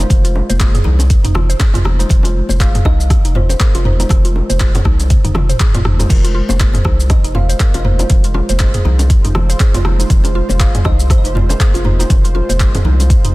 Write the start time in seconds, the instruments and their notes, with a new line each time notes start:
Already playing: kalimba C5
0.00 tine electric piano G#3 F4 C5, shaker
0.10 analog synth bass F1, kick, closed hi-hat, muted conga, low conga, shaker
0.24 synth pluck F4, closed hi-hat, shaker
0.36 low bongo
0.49 analog synth bass F1, synth pluck C5, closed hi-hat, muted conga, high conga, shaker
0.60 tine electric piano G#3 F4 C5, synth pluck G#4, kick, clap, closed hi-hat, low bongo, shaker
0.74 synth pluck G#4, closed hi-hat, mid tom, high bongo, shaker
0.84 analog synth bass C2, synth pluck D#4, muted conga, high conga, low conga
0.99 closed hi-hat, low bongo, shaker
1.10 kick, closed hi-hat, shaker
1.24 analog synth bass F1, synth pluck D#4, closed hi-hat, mid tom, low bongo, shaker
1.34 synth pluck F4, cross-stick, high bongo, muted conga, low conga
1.49 synth pluck C5, closed hi-hat, shaker
1.59 synth pluck G#4, kick, clap, closed hi-hat, low bongo, shaker
1.74 analog synth bass F1, synth pluck F4, closed hi-hat, mid tom, high bongo, muted conga, shaker
1.85 synth pluck D#4, cross-stick, low bongo, high conga, low conga
1.99 tine electric piano G#3 F4 C5, synth pluck D#4, closed hi-hat, shaker
2.09 analog synth bass F1, kick, closed hi-hat, muted conga, high conga, low conga, shaker
2.23 synth pluck F4, closed hi-hat, low bongo, shaker
2.49 analog synth bass F1, synth pluck C5, low bongo, muted conga, high conga, shaker
2.60 tine electric piano G#3 F4 C5, synth pluck G#4, kalimba F5, kick, clap, closed hi-hat, shaker
2.75 synth pluck G#4, closed hi-hat, mid tom, high bongo, shaker
2.85 analog synth bass C2, synth pluck D#4, kalimba D#5, kick, cross-stick, low bongo, muted conga, low conga
3.01 shaker
3.10 kick, cross-stick, closed hi-hat, low bongo, low conga, shaker
3.25 analog synth bass F1, synth pluck D#4, closed hi-hat, shaker
3.35 synth pluck F4, kalimba C5, mid tom, high bongo, muted conga
3.49 synth pluck C5, closed hi-hat, low bongo, shaker
3.60 synth pluck G#4, kalimba A#4, kick, clap, closed hi-hat, high conga, shaker
3.75 analog synth bass F1, synth pluck F4, closed hi-hat, low bongo, muted conga, shaker
3.84 synth pluck D#4, kalimba C5, mid tom, high conga
4.00 tine electric piano G#3 F4 C5, synth pluck D#4, closed hi-hat, high bongo, shaker
4.09 analog synth bass F1, kick, cross-stick, closed hi-hat, low bongo, muted conga, high conga, low conga, shaker
4.25 synth pluck F4, closed hi-hat, shaker
4.36 low bongo
4.50 analog synth bass F1, synth pluck C5, closed hi-hat, muted conga, high conga, shaker
4.60 tine electric piano G#3 F4 C5, synth pluck G#4, kick, clap, closed hi-hat, shaker
4.74 synth pluck G#4, closed hi-hat, mid tom, high bongo, low bongo, shaker
4.85 analog synth bass C2, synth pluck D#4, kick, cross-stick, muted conga, high conga, low conga
5.00 closed hi-hat, low bongo, shaker
5.10 kick, closed hi-hat, high tom, shaker
5.24 analog synth bass F1, synth pluck D#4, closed hi-hat, mid tom, high tom, shaker
5.34 synth pluck F4, cross-stick, high tom, high bongo, low bongo, muted conga, low conga
5.49 synth pluck C5, closed hi-hat, mid tom, shaker
5.60 synth pluck G#4, kick, clap, closed hi-hat, mid tom, low bongo, shaker
5.74 analog synth bass F1, synth pluck F4, closed hi-hat, mid tom, high bongo, muted conga, shaker
5.85 synth pluck D#4, cross-stick, mid tom, high conga, low conga
5.99 tine electric piano G#3 F4 C5, synth pluck D#4, closed hi-hat, mid tom, low bongo, shaker
6.09 analog synth bass F1, analog synth pad G#3 F4 C5, kalimba A#4, kick, closed hi-hat, crash, low bongo, muted conga, high conga, low conga, shaker
6.24 synth pluck F4, closed hi-hat, shaker
6.35 synth pluck F4
6.49 analog synth bass F1, synth pluck C5, low bongo, muted conga, high conga, shaker
6.60 tine electric piano G#3 F4 C5, synth pluck G#4, kalimba C5, kick, clap, closed hi-hat, shaker
6.74 synth pluck G#4, closed hi-hat, mid tom, high bongo, low bongo, shaker
6.85 analog synth bass C2, synth pluck D#4, kick, cross-stick, muted conga, low conga
7.00 shaker
7.10 kalimba D#5, kick, cross-stick, closed hi-hat, low bongo, low conga, shaker
7.24 analog synth bass F1, synth pluck D#4, closed hi-hat, shaker
7.35 synth pluck F4, kalimba F5, mid tom, high bongo, low bongo, muted conga
7.49 synth pluck C5, closed hi-hat, shaker
7.60 synth pluck G#4, kalimba A#4, kick, clap, closed hi-hat, high conga, shaker
7.74 analog synth bass F1, synth pluck F4, closed hi-hat, low bongo, muted conga, shaker
7.79 kalimba D#5
7.85 synth pluck D#4, kalimba C5, mid tom, high conga
7.99 tine electric piano G#3 F4 C5, synth pluck D#4, closed hi-hat, high bongo, low bongo, shaker
8.10 analog synth bass F1, kick, closed hi-hat, muted conga, low conga, shaker
8.24 synth pluck F4, closed hi-hat, shaker
8.34 synth pluck F4, low bongo
8.49 analog synth bass F1, synth pluck C5, closed hi-hat, muted conga, high conga, shaker
8.59 tine electric piano G#3 F4 C5, synth pluck G#4, kick, clap, closed hi-hat, low bongo, shaker
8.74 synth pluck G#4, closed hi-hat, mid tom, high bongo, shaker
8.85 analog synth bass C2, synth pluck D#4, muted conga, high conga, low conga
8.99 closed hi-hat, low bongo, shaker
9.10 kick, closed hi-hat, shaker
9.24 analog synth bass F1, synth pluck D#4, closed hi-hat, mid tom, low bongo, shaker
9.35 synth pluck F4, cross-stick, high bongo, muted conga, low conga
9.50 synth pluck C5, closed hi-hat, shaker
9.60 synth pluck G#4, kick, clap, closed hi-hat, low bongo, shaker
9.74 analog synth bass F1, synth pluck F4, closed hi-hat, mid tom, high bongo, muted conga, shaker
9.85 synth pluck D#4, cross-stick, low bongo, high conga, low conga
9.99 tine electric piano G#3 F4 C5, synth pluck D#4, closed hi-hat, shaker
10.10 analog synth bass F1, kick, closed hi-hat, muted conga, high conga, low conga, shaker
10.24 synth pluck F4, closed hi-hat, low bongo, shaker
10.35 synth pluck F4
10.49 analog synth bass F1, synth pluck C5, low bongo, muted conga, high conga, shaker
10.60 tine electric piano G#3 F4 C5, synth pluck G#4, kalimba F5, kick, clap, closed hi-hat, shaker
10.74 synth pluck G#4, closed hi-hat, mid tom, high bongo, shaker
10.84 analog synth bass C2, synth pluck D#4, kalimba D#5, kick, cross-stick, low bongo, muted conga, low conga
11.00 shaker
11.10 kalimba C5, kick, cross-stick, closed hi-hat, low bongo, low conga, shaker
11.18 kalimba D#5
11.24 analog synth bass F1, synth pluck D#4, kalimba C5, closed hi-hat, shaker
11.35 synth pluck F4, mid tom, high bongo, muted conga
11.49 kalimba A#4, synth pluck C5, closed hi-hat, low bongo, shaker
11.60 synth pluck G#4, kick, clap, closed hi-hat, high conga, shaker
11.74 analog synth bass F1, synth pluck F4, closed hi-hat, low bongo, muted conga, shaker
11.84 synth pluck D#4, kalimba C5, mid tom, high conga
11.99 tine electric piano G#3 F4 C5, synth pluck D#4, closed hi-hat, high bongo, shaker
12.10 analog synth bass F1, kalimba C5, kick, closed hi-hat, low bongo, muted conga, low conga, shaker
12.24 synth pluck F4, closed hi-hat, shaker
12.35 synth pluck F4, low bongo
12.49 analog synth bass F1, synth pluck C5, closed hi-hat, muted conga, high conga, shaker
12.60 tine electric piano G#3 F4 C5, synth pluck G#4, kick, clap, closed hi-hat, shaker
12.75 synth pluck G#4, closed hi-hat, mid tom, high bongo, low bongo, shaker
12.85 analog synth bass C2, synth pluck D#4, muted conga, high conga, low conga
13.00 closed hi-hat, low bongo, shaker
13.10 kick, closed hi-hat, shaker
13.24 analog synth bass F1, synth pluck D#4, closed hi-hat, mid tom, shaker